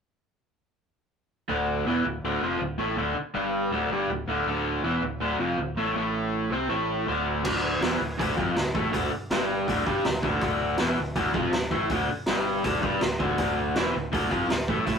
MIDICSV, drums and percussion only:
0, 0, Header, 1, 2, 480
1, 0, Start_track
1, 0, Key_signature, -1, "minor"
1, 0, Tempo, 371978
1, 1918, Time_signature, 4, 2, 24, 8
1, 19338, End_track
2, 0, Start_track
2, 0, Title_t, "Drums"
2, 9609, Note_on_c, 9, 36, 90
2, 9609, Note_on_c, 9, 49, 100
2, 9738, Note_off_c, 9, 36, 0
2, 9738, Note_off_c, 9, 49, 0
2, 10093, Note_on_c, 9, 38, 108
2, 10093, Note_on_c, 9, 46, 54
2, 10222, Note_off_c, 9, 38, 0
2, 10222, Note_off_c, 9, 46, 0
2, 10574, Note_on_c, 9, 36, 108
2, 10590, Note_on_c, 9, 46, 59
2, 10703, Note_off_c, 9, 36, 0
2, 10719, Note_off_c, 9, 46, 0
2, 10811, Note_on_c, 9, 36, 98
2, 10940, Note_off_c, 9, 36, 0
2, 11051, Note_on_c, 9, 38, 89
2, 11051, Note_on_c, 9, 46, 49
2, 11180, Note_off_c, 9, 38, 0
2, 11180, Note_off_c, 9, 46, 0
2, 11291, Note_on_c, 9, 36, 108
2, 11420, Note_off_c, 9, 36, 0
2, 11528, Note_on_c, 9, 36, 99
2, 11534, Note_on_c, 9, 46, 57
2, 11657, Note_off_c, 9, 36, 0
2, 11663, Note_off_c, 9, 46, 0
2, 12008, Note_on_c, 9, 38, 102
2, 12008, Note_on_c, 9, 46, 51
2, 12137, Note_off_c, 9, 38, 0
2, 12137, Note_off_c, 9, 46, 0
2, 12491, Note_on_c, 9, 36, 98
2, 12503, Note_on_c, 9, 46, 55
2, 12620, Note_off_c, 9, 36, 0
2, 12632, Note_off_c, 9, 46, 0
2, 12731, Note_on_c, 9, 36, 97
2, 12860, Note_off_c, 9, 36, 0
2, 12965, Note_on_c, 9, 38, 100
2, 12965, Note_on_c, 9, 46, 44
2, 13094, Note_off_c, 9, 38, 0
2, 13094, Note_off_c, 9, 46, 0
2, 13201, Note_on_c, 9, 36, 101
2, 13330, Note_off_c, 9, 36, 0
2, 13435, Note_on_c, 9, 46, 46
2, 13440, Note_on_c, 9, 36, 101
2, 13564, Note_off_c, 9, 46, 0
2, 13569, Note_off_c, 9, 36, 0
2, 13906, Note_on_c, 9, 38, 91
2, 13906, Note_on_c, 9, 46, 58
2, 14035, Note_off_c, 9, 38, 0
2, 14035, Note_off_c, 9, 46, 0
2, 14396, Note_on_c, 9, 46, 50
2, 14397, Note_on_c, 9, 36, 95
2, 14525, Note_off_c, 9, 46, 0
2, 14526, Note_off_c, 9, 36, 0
2, 14636, Note_on_c, 9, 36, 103
2, 14766, Note_off_c, 9, 36, 0
2, 14874, Note_on_c, 9, 38, 93
2, 14874, Note_on_c, 9, 46, 46
2, 15003, Note_off_c, 9, 38, 0
2, 15003, Note_off_c, 9, 46, 0
2, 15115, Note_on_c, 9, 36, 94
2, 15244, Note_off_c, 9, 36, 0
2, 15351, Note_on_c, 9, 46, 52
2, 15355, Note_on_c, 9, 36, 100
2, 15480, Note_off_c, 9, 46, 0
2, 15484, Note_off_c, 9, 36, 0
2, 15824, Note_on_c, 9, 38, 111
2, 15824, Note_on_c, 9, 46, 52
2, 15953, Note_off_c, 9, 38, 0
2, 15953, Note_off_c, 9, 46, 0
2, 16311, Note_on_c, 9, 46, 51
2, 16316, Note_on_c, 9, 36, 102
2, 16440, Note_off_c, 9, 46, 0
2, 16445, Note_off_c, 9, 36, 0
2, 16557, Note_on_c, 9, 36, 113
2, 16686, Note_off_c, 9, 36, 0
2, 16788, Note_on_c, 9, 38, 102
2, 16788, Note_on_c, 9, 46, 46
2, 16917, Note_off_c, 9, 38, 0
2, 16917, Note_off_c, 9, 46, 0
2, 17033, Note_on_c, 9, 36, 104
2, 17162, Note_off_c, 9, 36, 0
2, 17265, Note_on_c, 9, 46, 49
2, 17270, Note_on_c, 9, 36, 101
2, 17394, Note_off_c, 9, 46, 0
2, 17399, Note_off_c, 9, 36, 0
2, 17750, Note_on_c, 9, 38, 97
2, 17750, Note_on_c, 9, 46, 50
2, 17879, Note_off_c, 9, 38, 0
2, 17879, Note_off_c, 9, 46, 0
2, 18232, Note_on_c, 9, 36, 108
2, 18248, Note_on_c, 9, 46, 55
2, 18361, Note_off_c, 9, 36, 0
2, 18377, Note_off_c, 9, 46, 0
2, 18470, Note_on_c, 9, 36, 97
2, 18599, Note_off_c, 9, 36, 0
2, 18711, Note_on_c, 9, 38, 104
2, 18711, Note_on_c, 9, 46, 52
2, 18840, Note_off_c, 9, 38, 0
2, 18840, Note_off_c, 9, 46, 0
2, 18946, Note_on_c, 9, 36, 106
2, 19075, Note_off_c, 9, 36, 0
2, 19186, Note_on_c, 9, 36, 104
2, 19188, Note_on_c, 9, 46, 54
2, 19315, Note_off_c, 9, 36, 0
2, 19317, Note_off_c, 9, 46, 0
2, 19338, End_track
0, 0, End_of_file